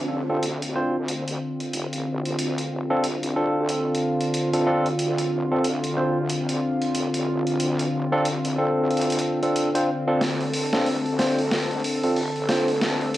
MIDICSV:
0, 0, Header, 1, 5, 480
1, 0, Start_track
1, 0, Key_signature, -1, "minor"
1, 0, Tempo, 652174
1, 1757, Time_signature, 4, 2, 24, 8
1, 9695, End_track
2, 0, Start_track
2, 0, Title_t, "Tine electric piano"
2, 0, Program_c, 0, 4
2, 217, Note_on_c, 0, 62, 72
2, 217, Note_on_c, 0, 65, 75
2, 217, Note_on_c, 0, 69, 87
2, 218, Note_on_c, 0, 60, 78
2, 321, Note_off_c, 0, 62, 0
2, 322, Note_off_c, 0, 60, 0
2, 322, Note_off_c, 0, 65, 0
2, 322, Note_off_c, 0, 69, 0
2, 555, Note_on_c, 0, 60, 79
2, 555, Note_on_c, 0, 62, 70
2, 556, Note_on_c, 0, 65, 72
2, 556, Note_on_c, 0, 72, 90
2, 703, Note_off_c, 0, 60, 0
2, 703, Note_off_c, 0, 62, 0
2, 703, Note_off_c, 0, 65, 0
2, 703, Note_off_c, 0, 72, 0
2, 2136, Note_on_c, 0, 62, 85
2, 2136, Note_on_c, 0, 65, 84
2, 2136, Note_on_c, 0, 69, 101
2, 2137, Note_on_c, 0, 60, 94
2, 2241, Note_off_c, 0, 62, 0
2, 2241, Note_off_c, 0, 65, 0
2, 2241, Note_off_c, 0, 69, 0
2, 2242, Note_off_c, 0, 60, 0
2, 2474, Note_on_c, 0, 60, 76
2, 2474, Note_on_c, 0, 65, 72
2, 2474, Note_on_c, 0, 69, 93
2, 2475, Note_on_c, 0, 62, 75
2, 3304, Note_off_c, 0, 60, 0
2, 3304, Note_off_c, 0, 65, 0
2, 3304, Note_off_c, 0, 69, 0
2, 3305, Note_off_c, 0, 62, 0
2, 3338, Note_on_c, 0, 60, 71
2, 3338, Note_on_c, 0, 62, 67
2, 3338, Note_on_c, 0, 65, 66
2, 3338, Note_on_c, 0, 69, 78
2, 3421, Note_off_c, 0, 60, 0
2, 3421, Note_off_c, 0, 62, 0
2, 3421, Note_off_c, 0, 65, 0
2, 3421, Note_off_c, 0, 69, 0
2, 3435, Note_on_c, 0, 60, 84
2, 3435, Note_on_c, 0, 62, 74
2, 3435, Note_on_c, 0, 65, 81
2, 3435, Note_on_c, 0, 69, 90
2, 3583, Note_off_c, 0, 60, 0
2, 3583, Note_off_c, 0, 62, 0
2, 3583, Note_off_c, 0, 65, 0
2, 3583, Note_off_c, 0, 69, 0
2, 4059, Note_on_c, 0, 62, 75
2, 4059, Note_on_c, 0, 65, 73
2, 4060, Note_on_c, 0, 60, 80
2, 4060, Note_on_c, 0, 69, 90
2, 4163, Note_off_c, 0, 60, 0
2, 4163, Note_off_c, 0, 62, 0
2, 4163, Note_off_c, 0, 65, 0
2, 4163, Note_off_c, 0, 69, 0
2, 4394, Note_on_c, 0, 62, 73
2, 4394, Note_on_c, 0, 72, 87
2, 4395, Note_on_c, 0, 60, 75
2, 4395, Note_on_c, 0, 65, 75
2, 4543, Note_off_c, 0, 60, 0
2, 4543, Note_off_c, 0, 62, 0
2, 4543, Note_off_c, 0, 65, 0
2, 4543, Note_off_c, 0, 72, 0
2, 5977, Note_on_c, 0, 65, 90
2, 5978, Note_on_c, 0, 60, 99
2, 5978, Note_on_c, 0, 69, 109
2, 5979, Note_on_c, 0, 62, 90
2, 6082, Note_off_c, 0, 60, 0
2, 6082, Note_off_c, 0, 62, 0
2, 6082, Note_off_c, 0, 65, 0
2, 6082, Note_off_c, 0, 69, 0
2, 6317, Note_on_c, 0, 62, 73
2, 6318, Note_on_c, 0, 60, 80
2, 6318, Note_on_c, 0, 69, 89
2, 6319, Note_on_c, 0, 65, 72
2, 6911, Note_off_c, 0, 62, 0
2, 6912, Note_off_c, 0, 60, 0
2, 6912, Note_off_c, 0, 65, 0
2, 6912, Note_off_c, 0, 69, 0
2, 6938, Note_on_c, 0, 60, 75
2, 6938, Note_on_c, 0, 62, 68
2, 6938, Note_on_c, 0, 65, 66
2, 6938, Note_on_c, 0, 69, 77
2, 7131, Note_off_c, 0, 60, 0
2, 7131, Note_off_c, 0, 69, 0
2, 7132, Note_off_c, 0, 62, 0
2, 7132, Note_off_c, 0, 65, 0
2, 7175, Note_on_c, 0, 60, 80
2, 7175, Note_on_c, 0, 62, 70
2, 7175, Note_on_c, 0, 65, 76
2, 7175, Note_on_c, 0, 72, 90
2, 7280, Note_off_c, 0, 62, 0
2, 7281, Note_off_c, 0, 60, 0
2, 7281, Note_off_c, 0, 65, 0
2, 7281, Note_off_c, 0, 72, 0
2, 7416, Note_on_c, 0, 65, 85
2, 7416, Note_on_c, 0, 69, 104
2, 7417, Note_on_c, 0, 60, 90
2, 7417, Note_on_c, 0, 62, 83
2, 7515, Note_off_c, 0, 60, 0
2, 7515, Note_off_c, 0, 62, 0
2, 7515, Note_off_c, 0, 65, 0
2, 7515, Note_off_c, 0, 69, 0
2, 7897, Note_on_c, 0, 60, 73
2, 7897, Note_on_c, 0, 62, 72
2, 7897, Note_on_c, 0, 69, 86
2, 7898, Note_on_c, 0, 65, 70
2, 8001, Note_off_c, 0, 60, 0
2, 8001, Note_off_c, 0, 62, 0
2, 8002, Note_off_c, 0, 65, 0
2, 8002, Note_off_c, 0, 69, 0
2, 8237, Note_on_c, 0, 60, 73
2, 8237, Note_on_c, 0, 62, 69
2, 8237, Note_on_c, 0, 65, 64
2, 8237, Note_on_c, 0, 72, 84
2, 8384, Note_off_c, 0, 60, 0
2, 8384, Note_off_c, 0, 62, 0
2, 8384, Note_off_c, 0, 65, 0
2, 8384, Note_off_c, 0, 72, 0
2, 8858, Note_on_c, 0, 69, 82
2, 8859, Note_on_c, 0, 60, 74
2, 8859, Note_on_c, 0, 62, 69
2, 8859, Note_on_c, 0, 65, 65
2, 8962, Note_off_c, 0, 62, 0
2, 8962, Note_off_c, 0, 65, 0
2, 8962, Note_off_c, 0, 69, 0
2, 8963, Note_off_c, 0, 60, 0
2, 9195, Note_on_c, 0, 60, 76
2, 9195, Note_on_c, 0, 62, 66
2, 9195, Note_on_c, 0, 65, 66
2, 9195, Note_on_c, 0, 72, 80
2, 9343, Note_off_c, 0, 60, 0
2, 9343, Note_off_c, 0, 62, 0
2, 9343, Note_off_c, 0, 65, 0
2, 9343, Note_off_c, 0, 72, 0
2, 9695, End_track
3, 0, Start_track
3, 0, Title_t, "Analog synth pad"
3, 0, Program_c, 1, 89
3, 0, Note_on_c, 1, 50, 89
3, 0, Note_on_c, 1, 60, 75
3, 0, Note_on_c, 1, 65, 93
3, 7515, Note_off_c, 1, 65, 0
3, 7517, Note_on_c, 1, 69, 100
3, 9695, Note_off_c, 1, 50, 0
3, 9695, Note_off_c, 1, 60, 0
3, 9695, Note_off_c, 1, 69, 0
3, 9695, End_track
4, 0, Start_track
4, 0, Title_t, "Wobble bass"
4, 0, Program_c, 2, 39
4, 76, Note_on_c, 2, 29, 88
4, 301, Note_off_c, 2, 29, 0
4, 316, Note_on_c, 2, 38, 95
4, 677, Note_off_c, 2, 38, 0
4, 698, Note_on_c, 2, 38, 97
4, 916, Note_off_c, 2, 38, 0
4, 935, Note_on_c, 2, 38, 93
4, 1019, Note_off_c, 2, 38, 0
4, 1275, Note_on_c, 2, 29, 92
4, 1396, Note_off_c, 2, 29, 0
4, 1420, Note_on_c, 2, 33, 95
4, 1742, Note_off_c, 2, 33, 0
4, 1757, Note_on_c, 2, 38, 95
4, 1981, Note_off_c, 2, 38, 0
4, 1995, Note_on_c, 2, 29, 89
4, 2220, Note_off_c, 2, 29, 0
4, 2236, Note_on_c, 2, 36, 94
4, 2596, Note_off_c, 2, 36, 0
4, 2618, Note_on_c, 2, 38, 98
4, 2836, Note_off_c, 2, 38, 0
4, 3340, Note_on_c, 2, 31, 88
4, 3661, Note_off_c, 2, 31, 0
4, 3676, Note_on_c, 2, 38, 97
4, 3901, Note_off_c, 2, 38, 0
4, 3916, Note_on_c, 2, 29, 92
4, 4141, Note_off_c, 2, 29, 0
4, 4154, Note_on_c, 2, 38, 94
4, 4516, Note_off_c, 2, 38, 0
4, 4538, Note_on_c, 2, 38, 96
4, 4756, Note_off_c, 2, 38, 0
4, 4778, Note_on_c, 2, 38, 97
4, 4861, Note_off_c, 2, 38, 0
4, 5115, Note_on_c, 2, 29, 99
4, 5236, Note_off_c, 2, 29, 0
4, 5258, Note_on_c, 2, 33, 93
4, 5580, Note_off_c, 2, 33, 0
4, 5594, Note_on_c, 2, 38, 94
4, 5820, Note_off_c, 2, 38, 0
4, 5835, Note_on_c, 2, 29, 95
4, 6060, Note_off_c, 2, 29, 0
4, 6075, Note_on_c, 2, 36, 92
4, 6436, Note_off_c, 2, 36, 0
4, 6457, Note_on_c, 2, 38, 97
4, 6780, Note_off_c, 2, 38, 0
4, 7516, Note_on_c, 2, 38, 96
4, 7741, Note_off_c, 2, 38, 0
4, 7756, Note_on_c, 2, 29, 90
4, 7981, Note_off_c, 2, 29, 0
4, 7997, Note_on_c, 2, 38, 93
4, 8357, Note_off_c, 2, 38, 0
4, 8379, Note_on_c, 2, 38, 96
4, 8596, Note_off_c, 2, 38, 0
4, 8619, Note_on_c, 2, 38, 94
4, 8701, Note_off_c, 2, 38, 0
4, 8954, Note_on_c, 2, 29, 105
4, 9076, Note_off_c, 2, 29, 0
4, 9099, Note_on_c, 2, 33, 90
4, 9421, Note_off_c, 2, 33, 0
4, 9436, Note_on_c, 2, 38, 98
4, 9661, Note_off_c, 2, 38, 0
4, 9695, End_track
5, 0, Start_track
5, 0, Title_t, "Drums"
5, 314, Note_on_c, 9, 42, 83
5, 388, Note_off_c, 9, 42, 0
5, 458, Note_on_c, 9, 42, 54
5, 532, Note_off_c, 9, 42, 0
5, 797, Note_on_c, 9, 42, 76
5, 871, Note_off_c, 9, 42, 0
5, 940, Note_on_c, 9, 42, 53
5, 1013, Note_off_c, 9, 42, 0
5, 1180, Note_on_c, 9, 42, 36
5, 1253, Note_off_c, 9, 42, 0
5, 1276, Note_on_c, 9, 42, 78
5, 1350, Note_off_c, 9, 42, 0
5, 1420, Note_on_c, 9, 42, 53
5, 1493, Note_off_c, 9, 42, 0
5, 1659, Note_on_c, 9, 42, 37
5, 1733, Note_off_c, 9, 42, 0
5, 1756, Note_on_c, 9, 42, 80
5, 1830, Note_off_c, 9, 42, 0
5, 1899, Note_on_c, 9, 42, 53
5, 1973, Note_off_c, 9, 42, 0
5, 2236, Note_on_c, 9, 42, 79
5, 2309, Note_off_c, 9, 42, 0
5, 2378, Note_on_c, 9, 42, 52
5, 2451, Note_off_c, 9, 42, 0
5, 2714, Note_on_c, 9, 42, 74
5, 2787, Note_off_c, 9, 42, 0
5, 2905, Note_on_c, 9, 42, 53
5, 2978, Note_off_c, 9, 42, 0
5, 3096, Note_on_c, 9, 42, 37
5, 3170, Note_off_c, 9, 42, 0
5, 3194, Note_on_c, 9, 42, 82
5, 3267, Note_off_c, 9, 42, 0
5, 3338, Note_on_c, 9, 42, 53
5, 3412, Note_off_c, 9, 42, 0
5, 3577, Note_on_c, 9, 42, 35
5, 3650, Note_off_c, 9, 42, 0
5, 3673, Note_on_c, 9, 42, 77
5, 3746, Note_off_c, 9, 42, 0
5, 3816, Note_on_c, 9, 42, 56
5, 3889, Note_off_c, 9, 42, 0
5, 4154, Note_on_c, 9, 42, 79
5, 4228, Note_off_c, 9, 42, 0
5, 4297, Note_on_c, 9, 42, 51
5, 4370, Note_off_c, 9, 42, 0
5, 4633, Note_on_c, 9, 42, 78
5, 4706, Note_off_c, 9, 42, 0
5, 4776, Note_on_c, 9, 42, 53
5, 4850, Note_off_c, 9, 42, 0
5, 5017, Note_on_c, 9, 42, 34
5, 5090, Note_off_c, 9, 42, 0
5, 5112, Note_on_c, 9, 42, 76
5, 5186, Note_off_c, 9, 42, 0
5, 5255, Note_on_c, 9, 42, 52
5, 5329, Note_off_c, 9, 42, 0
5, 5496, Note_on_c, 9, 42, 37
5, 5570, Note_off_c, 9, 42, 0
5, 5592, Note_on_c, 9, 42, 77
5, 5666, Note_off_c, 9, 42, 0
5, 5736, Note_on_c, 9, 42, 49
5, 5809, Note_off_c, 9, 42, 0
5, 6073, Note_on_c, 9, 42, 76
5, 6147, Note_off_c, 9, 42, 0
5, 6217, Note_on_c, 9, 42, 49
5, 6291, Note_off_c, 9, 42, 0
5, 6555, Note_on_c, 9, 42, 32
5, 6602, Note_off_c, 9, 42, 0
5, 6602, Note_on_c, 9, 42, 40
5, 6635, Note_off_c, 9, 42, 0
5, 6635, Note_on_c, 9, 42, 45
5, 6698, Note_off_c, 9, 42, 0
5, 6698, Note_on_c, 9, 42, 53
5, 6715, Note_off_c, 9, 42, 0
5, 6715, Note_on_c, 9, 42, 58
5, 6762, Note_off_c, 9, 42, 0
5, 6762, Note_on_c, 9, 42, 65
5, 6836, Note_off_c, 9, 42, 0
5, 6939, Note_on_c, 9, 42, 34
5, 7012, Note_off_c, 9, 42, 0
5, 7035, Note_on_c, 9, 42, 79
5, 7109, Note_off_c, 9, 42, 0
5, 7178, Note_on_c, 9, 42, 53
5, 7251, Note_off_c, 9, 42, 0
5, 7515, Note_on_c, 9, 38, 48
5, 7515, Note_on_c, 9, 46, 42
5, 7589, Note_off_c, 9, 38, 0
5, 7589, Note_off_c, 9, 46, 0
5, 7659, Note_on_c, 9, 46, 21
5, 7733, Note_off_c, 9, 46, 0
5, 7754, Note_on_c, 9, 46, 76
5, 7827, Note_off_c, 9, 46, 0
5, 7896, Note_on_c, 9, 38, 43
5, 7896, Note_on_c, 9, 46, 30
5, 7969, Note_off_c, 9, 38, 0
5, 7969, Note_off_c, 9, 46, 0
5, 7995, Note_on_c, 9, 46, 43
5, 8069, Note_off_c, 9, 46, 0
5, 8138, Note_on_c, 9, 46, 21
5, 8212, Note_off_c, 9, 46, 0
5, 8235, Note_on_c, 9, 38, 50
5, 8235, Note_on_c, 9, 46, 70
5, 8309, Note_off_c, 9, 38, 0
5, 8309, Note_off_c, 9, 46, 0
5, 8379, Note_on_c, 9, 46, 32
5, 8453, Note_off_c, 9, 46, 0
5, 8474, Note_on_c, 9, 38, 53
5, 8474, Note_on_c, 9, 46, 37
5, 8520, Note_off_c, 9, 46, 0
5, 8520, Note_on_c, 9, 46, 32
5, 8548, Note_off_c, 9, 38, 0
5, 8555, Note_off_c, 9, 46, 0
5, 8555, Note_on_c, 9, 46, 27
5, 8618, Note_off_c, 9, 46, 0
5, 8618, Note_on_c, 9, 46, 22
5, 8635, Note_off_c, 9, 46, 0
5, 8635, Note_on_c, 9, 46, 17
5, 8683, Note_off_c, 9, 46, 0
5, 8683, Note_on_c, 9, 46, 15
5, 8717, Note_off_c, 9, 46, 0
5, 8717, Note_on_c, 9, 46, 74
5, 8790, Note_off_c, 9, 46, 0
5, 8857, Note_on_c, 9, 46, 32
5, 8931, Note_off_c, 9, 46, 0
5, 8953, Note_on_c, 9, 46, 43
5, 9026, Note_off_c, 9, 46, 0
5, 9096, Note_on_c, 9, 46, 20
5, 9170, Note_off_c, 9, 46, 0
5, 9191, Note_on_c, 9, 38, 56
5, 9191, Note_on_c, 9, 46, 69
5, 9264, Note_off_c, 9, 38, 0
5, 9264, Note_off_c, 9, 46, 0
5, 9334, Note_on_c, 9, 46, 31
5, 9407, Note_off_c, 9, 46, 0
5, 9432, Note_on_c, 9, 38, 59
5, 9432, Note_on_c, 9, 46, 42
5, 9505, Note_off_c, 9, 38, 0
5, 9505, Note_off_c, 9, 46, 0
5, 9577, Note_on_c, 9, 46, 21
5, 9650, Note_off_c, 9, 46, 0
5, 9695, End_track
0, 0, End_of_file